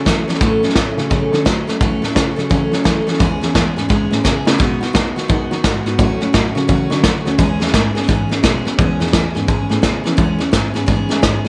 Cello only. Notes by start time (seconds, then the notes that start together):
0.06 E3
0.29 E3
0.41 A2
0.63 A2
0.76 A2
0.98 C#3
1.11 C#3
1.33 D3
1.46 F#3
1.68 A3
1.81 A2
2.03 A2
2.16 C#3
2.38 C#3
2.51 C#3
2.72 C#3
2.85 E3
3.07 E3
3.20 E2
3.42 E2
3.55 E2
3.77 G#2
3.90 G#2
4.12 A2
4.25 C#3
4.47 C#3
4.60 B2
4.81 B2
4.95 D#3
5.16 D#3
5.30 D#3
5.51 D#3
5.64 G#2
5.86 G#2
5.99 A2
6.21 A2
6.34 A2
6.56 C#3
6.69 C#3
6.91 D3
7.03 F#3
7.26 D2
7.39 E2
7.61 E2
7.74 G#2
7.96 G#2
8.09 G#2
8.31 G#2
8.44 B2
8.66 B2
8.79 E2
9.00 E2
9.13 E2
9.35 G#2
9.48 G#2
9.71 A2
9.83 C#3
10.06 E3
10.18 E2
10.40 E2
10.53 G#2
10.75 G#2
10.88 G#2
11.11 G#2
11.23 G#2